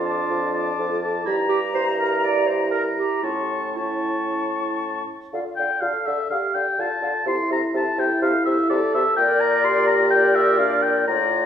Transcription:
Already playing: F2 D4 F4
0.05 A5 D6
0.30 F2
0.53 A5 D6
0.79 F2 A4
1.02 A5 D6
1.25 G2 E4 G4 A#5
1.49 G4
1.74 E4 C5
1.98 A#4
2.24 D5
2.47 C5
2.71 A#4 A#5
2.97 G4 A#5
3.23 A2 C#4 F4 A5 C#6
3.76 E4 A5 C#6
5.33 D3 F4 A4 F5
5.56 D3 A4 F5 G5
5.81 D3 A4 F5
6.06 D3 A4 E5 F5
6.30 D3 G4 A4 F5
6.54 D3 A4 F5 G5
6.78 D3 F4 A4 F5 A5
7.02 D3 A4 F5
7.25 C3 E4 A4 E5 C6
7.50 C3 A4 E5 A#5
7.74 C3 E4 A4 E5 A5
7.98 C3 A4 E5 G5
8.22 C3 A4 E5 F5
8.45 C3 A4 E5
8.69 C3 A4 D5 E5
8.92 C3 A4 E5
9.15 A#2 A#4 D5 G5
9.40 A#5
9.64 G4 C6
9.87 A#5
10.10 A#4 D5 G5
10.35 E5
10.59 D4 F5
10.82 G5
11.07 A2 F4 D5 A#5

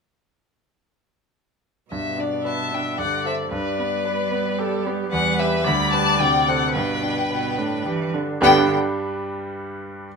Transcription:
1.91 G2 B2 E5
2.18 D4 D5
2.44 B4 E5 A5
2.71 D4 G5
2.99 G2 D3 D5 F#5
3.25 A4 C5 E5
3.51 G2 G3 B4 D5
3.79 B3 B4
4.05 B4
4.32 B3
4.59 G4 A4
4.85 B3 G4
5.11 E2 G3 B4 F#5
5.39 G4 B4 E5
5.64 D2 G3 D5 B5
5.93 G4 B4 A5
6.20 D2 C3 G5
6.48 A4 C5 F#5
6.73 G2 B2 B4 G5
7.02 D4
7.30 B2 B4
7.58 A2 D4
7.86 E3 G4
8.14 D3 D4
8.40 G2 D3 G3 B3 D4 G4 B4 G5

